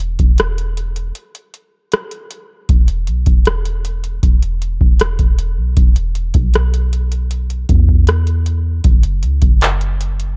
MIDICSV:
0, 0, Header, 1, 3, 480
1, 0, Start_track
1, 0, Tempo, 769231
1, 1681, Time_signature, 4, 2, 24, 8
1, 6470, End_track
2, 0, Start_track
2, 0, Title_t, "808-style bass"
2, 0, Program_c, 0, 38
2, 0, Note_on_c, 0, 28, 106
2, 107, Note_off_c, 0, 28, 0
2, 122, Note_on_c, 0, 28, 105
2, 697, Note_off_c, 0, 28, 0
2, 1680, Note_on_c, 0, 28, 108
2, 1919, Note_on_c, 0, 35, 100
2, 1929, Note_off_c, 0, 28, 0
2, 2034, Note_off_c, 0, 35, 0
2, 2039, Note_on_c, 0, 28, 104
2, 2616, Note_off_c, 0, 28, 0
2, 2640, Note_on_c, 0, 28, 100
2, 2986, Note_off_c, 0, 28, 0
2, 3001, Note_on_c, 0, 28, 94
2, 3231, Note_off_c, 0, 28, 0
2, 3240, Note_on_c, 0, 28, 102
2, 3477, Note_on_c, 0, 35, 94
2, 3486, Note_off_c, 0, 28, 0
2, 3593, Note_off_c, 0, 35, 0
2, 3600, Note_on_c, 0, 28, 113
2, 3946, Note_off_c, 0, 28, 0
2, 3960, Note_on_c, 0, 35, 104
2, 4776, Note_off_c, 0, 35, 0
2, 4800, Note_on_c, 0, 40, 100
2, 5496, Note_off_c, 0, 40, 0
2, 5519, Note_on_c, 0, 30, 107
2, 5759, Note_on_c, 0, 37, 103
2, 5769, Note_off_c, 0, 30, 0
2, 5874, Note_off_c, 0, 37, 0
2, 5879, Note_on_c, 0, 30, 105
2, 6456, Note_off_c, 0, 30, 0
2, 6470, End_track
3, 0, Start_track
3, 0, Title_t, "Drums"
3, 0, Note_on_c, 9, 42, 59
3, 61, Note_off_c, 9, 42, 0
3, 118, Note_on_c, 9, 42, 55
3, 121, Note_on_c, 9, 36, 97
3, 181, Note_off_c, 9, 42, 0
3, 183, Note_off_c, 9, 36, 0
3, 237, Note_on_c, 9, 42, 71
3, 248, Note_on_c, 9, 37, 116
3, 299, Note_off_c, 9, 42, 0
3, 310, Note_off_c, 9, 37, 0
3, 363, Note_on_c, 9, 42, 54
3, 425, Note_off_c, 9, 42, 0
3, 482, Note_on_c, 9, 42, 64
3, 544, Note_off_c, 9, 42, 0
3, 600, Note_on_c, 9, 42, 57
3, 662, Note_off_c, 9, 42, 0
3, 718, Note_on_c, 9, 42, 68
3, 781, Note_off_c, 9, 42, 0
3, 842, Note_on_c, 9, 42, 51
3, 904, Note_off_c, 9, 42, 0
3, 960, Note_on_c, 9, 42, 54
3, 1022, Note_off_c, 9, 42, 0
3, 1197, Note_on_c, 9, 42, 68
3, 1208, Note_on_c, 9, 37, 104
3, 1260, Note_off_c, 9, 42, 0
3, 1270, Note_off_c, 9, 37, 0
3, 1319, Note_on_c, 9, 42, 53
3, 1381, Note_off_c, 9, 42, 0
3, 1439, Note_on_c, 9, 42, 59
3, 1501, Note_off_c, 9, 42, 0
3, 1679, Note_on_c, 9, 42, 78
3, 1680, Note_on_c, 9, 36, 113
3, 1741, Note_off_c, 9, 42, 0
3, 1743, Note_off_c, 9, 36, 0
3, 1797, Note_on_c, 9, 42, 55
3, 1860, Note_off_c, 9, 42, 0
3, 1917, Note_on_c, 9, 42, 57
3, 1980, Note_off_c, 9, 42, 0
3, 2036, Note_on_c, 9, 42, 54
3, 2039, Note_on_c, 9, 36, 95
3, 2098, Note_off_c, 9, 42, 0
3, 2102, Note_off_c, 9, 36, 0
3, 2156, Note_on_c, 9, 42, 67
3, 2167, Note_on_c, 9, 37, 120
3, 2218, Note_off_c, 9, 42, 0
3, 2229, Note_off_c, 9, 37, 0
3, 2280, Note_on_c, 9, 42, 55
3, 2343, Note_off_c, 9, 42, 0
3, 2401, Note_on_c, 9, 42, 66
3, 2463, Note_off_c, 9, 42, 0
3, 2520, Note_on_c, 9, 42, 57
3, 2582, Note_off_c, 9, 42, 0
3, 2640, Note_on_c, 9, 36, 89
3, 2640, Note_on_c, 9, 42, 73
3, 2702, Note_off_c, 9, 36, 0
3, 2702, Note_off_c, 9, 42, 0
3, 2761, Note_on_c, 9, 42, 52
3, 2823, Note_off_c, 9, 42, 0
3, 2881, Note_on_c, 9, 42, 56
3, 2944, Note_off_c, 9, 42, 0
3, 3001, Note_on_c, 9, 36, 92
3, 3063, Note_off_c, 9, 36, 0
3, 3117, Note_on_c, 9, 42, 73
3, 3127, Note_on_c, 9, 37, 110
3, 3180, Note_off_c, 9, 42, 0
3, 3190, Note_off_c, 9, 37, 0
3, 3238, Note_on_c, 9, 42, 51
3, 3239, Note_on_c, 9, 36, 84
3, 3300, Note_off_c, 9, 42, 0
3, 3302, Note_off_c, 9, 36, 0
3, 3361, Note_on_c, 9, 42, 59
3, 3423, Note_off_c, 9, 42, 0
3, 3598, Note_on_c, 9, 42, 78
3, 3600, Note_on_c, 9, 36, 120
3, 3661, Note_off_c, 9, 42, 0
3, 3662, Note_off_c, 9, 36, 0
3, 3719, Note_on_c, 9, 42, 55
3, 3781, Note_off_c, 9, 42, 0
3, 3839, Note_on_c, 9, 42, 60
3, 3901, Note_off_c, 9, 42, 0
3, 3956, Note_on_c, 9, 42, 54
3, 3959, Note_on_c, 9, 36, 100
3, 4019, Note_off_c, 9, 42, 0
3, 4021, Note_off_c, 9, 36, 0
3, 4079, Note_on_c, 9, 42, 69
3, 4090, Note_on_c, 9, 37, 121
3, 4141, Note_off_c, 9, 42, 0
3, 4152, Note_off_c, 9, 37, 0
3, 4204, Note_on_c, 9, 42, 54
3, 4266, Note_off_c, 9, 42, 0
3, 4324, Note_on_c, 9, 42, 65
3, 4386, Note_off_c, 9, 42, 0
3, 4441, Note_on_c, 9, 42, 59
3, 4503, Note_off_c, 9, 42, 0
3, 4560, Note_on_c, 9, 42, 74
3, 4623, Note_off_c, 9, 42, 0
3, 4680, Note_on_c, 9, 42, 51
3, 4743, Note_off_c, 9, 42, 0
3, 4799, Note_on_c, 9, 42, 57
3, 4800, Note_on_c, 9, 36, 88
3, 4861, Note_off_c, 9, 42, 0
3, 4863, Note_off_c, 9, 36, 0
3, 4920, Note_on_c, 9, 36, 88
3, 4982, Note_off_c, 9, 36, 0
3, 5036, Note_on_c, 9, 42, 72
3, 5046, Note_on_c, 9, 37, 114
3, 5099, Note_off_c, 9, 42, 0
3, 5109, Note_off_c, 9, 37, 0
3, 5160, Note_on_c, 9, 42, 52
3, 5222, Note_off_c, 9, 42, 0
3, 5280, Note_on_c, 9, 42, 60
3, 5342, Note_off_c, 9, 42, 0
3, 5517, Note_on_c, 9, 42, 83
3, 5520, Note_on_c, 9, 36, 121
3, 5579, Note_off_c, 9, 42, 0
3, 5582, Note_off_c, 9, 36, 0
3, 5637, Note_on_c, 9, 42, 56
3, 5699, Note_off_c, 9, 42, 0
3, 5758, Note_on_c, 9, 42, 57
3, 5820, Note_off_c, 9, 42, 0
3, 5876, Note_on_c, 9, 42, 59
3, 5879, Note_on_c, 9, 36, 98
3, 5938, Note_off_c, 9, 42, 0
3, 5941, Note_off_c, 9, 36, 0
3, 5998, Note_on_c, 9, 42, 70
3, 6009, Note_on_c, 9, 39, 124
3, 6061, Note_off_c, 9, 42, 0
3, 6072, Note_off_c, 9, 39, 0
3, 6122, Note_on_c, 9, 42, 56
3, 6184, Note_off_c, 9, 42, 0
3, 6244, Note_on_c, 9, 42, 71
3, 6307, Note_off_c, 9, 42, 0
3, 6363, Note_on_c, 9, 42, 61
3, 6425, Note_off_c, 9, 42, 0
3, 6470, End_track
0, 0, End_of_file